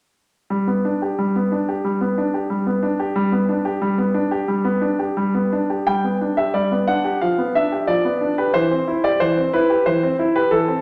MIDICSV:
0, 0, Header, 1, 2, 480
1, 0, Start_track
1, 0, Key_signature, 1, "major"
1, 0, Tempo, 687285
1, 350, Time_signature, 4, 2, 24, 8
1, 829, Tempo, 657895
1, 3229, Tempo, 693642
1, 4189, Tempo, 671892
1, 5629, Tempo, 655738
1, 7778, End_track
2, 0, Start_track
2, 0, Title_t, "Grand piano"
2, 0, Program_c, 0, 0
2, 351, Note_on_c, 0, 55, 39
2, 467, Note_off_c, 0, 55, 0
2, 470, Note_on_c, 0, 59, 29
2, 593, Note_on_c, 0, 62, 31
2, 597, Note_off_c, 0, 59, 0
2, 713, Note_on_c, 0, 67, 30
2, 717, Note_off_c, 0, 62, 0
2, 827, Note_on_c, 0, 55, 37
2, 836, Note_off_c, 0, 67, 0
2, 947, Note_off_c, 0, 55, 0
2, 954, Note_on_c, 0, 59, 29
2, 1071, Note_on_c, 0, 62, 35
2, 1080, Note_off_c, 0, 59, 0
2, 1193, Note_on_c, 0, 67, 33
2, 1198, Note_off_c, 0, 62, 0
2, 1309, Note_on_c, 0, 55, 34
2, 1319, Note_off_c, 0, 67, 0
2, 1427, Note_off_c, 0, 55, 0
2, 1429, Note_on_c, 0, 59, 34
2, 1552, Note_on_c, 0, 62, 36
2, 1557, Note_off_c, 0, 59, 0
2, 1671, Note_on_c, 0, 67, 30
2, 1679, Note_off_c, 0, 62, 0
2, 1786, Note_on_c, 0, 55, 36
2, 1798, Note_off_c, 0, 67, 0
2, 1906, Note_off_c, 0, 55, 0
2, 1908, Note_on_c, 0, 59, 31
2, 2025, Note_on_c, 0, 62, 34
2, 2036, Note_off_c, 0, 59, 0
2, 2148, Note_on_c, 0, 67, 35
2, 2154, Note_off_c, 0, 62, 0
2, 2265, Note_on_c, 0, 55, 49
2, 2275, Note_off_c, 0, 67, 0
2, 2383, Note_off_c, 0, 55, 0
2, 2387, Note_on_c, 0, 59, 35
2, 2508, Note_on_c, 0, 62, 36
2, 2514, Note_off_c, 0, 59, 0
2, 2627, Note_on_c, 0, 67, 38
2, 2634, Note_off_c, 0, 62, 0
2, 2746, Note_on_c, 0, 55, 46
2, 2753, Note_off_c, 0, 67, 0
2, 2863, Note_off_c, 0, 55, 0
2, 2868, Note_on_c, 0, 59, 37
2, 2986, Note_on_c, 0, 62, 40
2, 2994, Note_off_c, 0, 59, 0
2, 3111, Note_on_c, 0, 67, 41
2, 3113, Note_off_c, 0, 62, 0
2, 3232, Note_on_c, 0, 55, 39
2, 3236, Note_off_c, 0, 67, 0
2, 3343, Note_off_c, 0, 55, 0
2, 3346, Note_on_c, 0, 59, 41
2, 3463, Note_on_c, 0, 62, 38
2, 3469, Note_off_c, 0, 59, 0
2, 3587, Note_off_c, 0, 62, 0
2, 3587, Note_on_c, 0, 67, 35
2, 3708, Note_on_c, 0, 55, 40
2, 3710, Note_off_c, 0, 67, 0
2, 3823, Note_off_c, 0, 55, 0
2, 3830, Note_on_c, 0, 59, 35
2, 3955, Note_on_c, 0, 62, 37
2, 3957, Note_off_c, 0, 59, 0
2, 4075, Note_on_c, 0, 67, 33
2, 4080, Note_off_c, 0, 62, 0
2, 4191, Note_on_c, 0, 79, 55
2, 4192, Note_off_c, 0, 67, 0
2, 4196, Note_on_c, 0, 55, 39
2, 4309, Note_off_c, 0, 55, 0
2, 4317, Note_on_c, 0, 59, 27
2, 4407, Note_off_c, 0, 79, 0
2, 4439, Note_off_c, 0, 59, 0
2, 4439, Note_on_c, 0, 62, 31
2, 4551, Note_on_c, 0, 76, 50
2, 4555, Note_on_c, 0, 67, 30
2, 4561, Note_off_c, 0, 62, 0
2, 4671, Note_off_c, 0, 76, 0
2, 4671, Note_on_c, 0, 74, 47
2, 4673, Note_on_c, 0, 55, 37
2, 4679, Note_off_c, 0, 67, 0
2, 4788, Note_off_c, 0, 55, 0
2, 4797, Note_on_c, 0, 59, 29
2, 4816, Note_off_c, 0, 74, 0
2, 4912, Note_on_c, 0, 78, 56
2, 4916, Note_on_c, 0, 62, 34
2, 4920, Note_off_c, 0, 59, 0
2, 5033, Note_on_c, 0, 67, 34
2, 5040, Note_off_c, 0, 62, 0
2, 5128, Note_off_c, 0, 78, 0
2, 5153, Note_off_c, 0, 67, 0
2, 5154, Note_on_c, 0, 77, 42
2, 5160, Note_on_c, 0, 53, 37
2, 5273, Note_off_c, 0, 53, 0
2, 5274, Note_on_c, 0, 59, 34
2, 5393, Note_off_c, 0, 77, 0
2, 5396, Note_on_c, 0, 76, 58
2, 5399, Note_off_c, 0, 59, 0
2, 5400, Note_on_c, 0, 62, 34
2, 5516, Note_on_c, 0, 67, 31
2, 5521, Note_off_c, 0, 62, 0
2, 5608, Note_off_c, 0, 76, 0
2, 5626, Note_on_c, 0, 74, 57
2, 5629, Note_on_c, 0, 53, 38
2, 5638, Note_off_c, 0, 67, 0
2, 5747, Note_off_c, 0, 53, 0
2, 5751, Note_on_c, 0, 59, 32
2, 5872, Note_on_c, 0, 62, 35
2, 5879, Note_off_c, 0, 59, 0
2, 5963, Note_off_c, 0, 74, 0
2, 5995, Note_on_c, 0, 71, 47
2, 5997, Note_on_c, 0, 67, 32
2, 6000, Note_off_c, 0, 62, 0
2, 6110, Note_on_c, 0, 72, 61
2, 6116, Note_on_c, 0, 52, 46
2, 6117, Note_off_c, 0, 71, 0
2, 6118, Note_off_c, 0, 67, 0
2, 6234, Note_off_c, 0, 52, 0
2, 6239, Note_on_c, 0, 60, 33
2, 6357, Note_on_c, 0, 64, 35
2, 6366, Note_off_c, 0, 60, 0
2, 6477, Note_off_c, 0, 72, 0
2, 6477, Note_on_c, 0, 67, 36
2, 6479, Note_on_c, 0, 74, 56
2, 6485, Note_off_c, 0, 64, 0
2, 6596, Note_on_c, 0, 72, 67
2, 6599, Note_off_c, 0, 74, 0
2, 6603, Note_on_c, 0, 52, 43
2, 6604, Note_off_c, 0, 67, 0
2, 6718, Note_off_c, 0, 52, 0
2, 6721, Note_on_c, 0, 60, 35
2, 6838, Note_off_c, 0, 72, 0
2, 6840, Note_on_c, 0, 71, 58
2, 6843, Note_on_c, 0, 64, 41
2, 6846, Note_off_c, 0, 60, 0
2, 6962, Note_on_c, 0, 67, 38
2, 6967, Note_off_c, 0, 64, 0
2, 7078, Note_on_c, 0, 72, 58
2, 7080, Note_off_c, 0, 71, 0
2, 7082, Note_on_c, 0, 52, 39
2, 7086, Note_off_c, 0, 67, 0
2, 7196, Note_off_c, 0, 52, 0
2, 7205, Note_on_c, 0, 60, 38
2, 7292, Note_off_c, 0, 72, 0
2, 7322, Note_on_c, 0, 64, 41
2, 7326, Note_off_c, 0, 60, 0
2, 7441, Note_on_c, 0, 71, 56
2, 7443, Note_on_c, 0, 67, 37
2, 7444, Note_off_c, 0, 64, 0
2, 7555, Note_on_c, 0, 69, 59
2, 7557, Note_off_c, 0, 71, 0
2, 7557, Note_on_c, 0, 52, 39
2, 7563, Note_off_c, 0, 67, 0
2, 7670, Note_off_c, 0, 52, 0
2, 7681, Note_on_c, 0, 60, 36
2, 7766, Note_off_c, 0, 69, 0
2, 7778, Note_off_c, 0, 60, 0
2, 7778, End_track
0, 0, End_of_file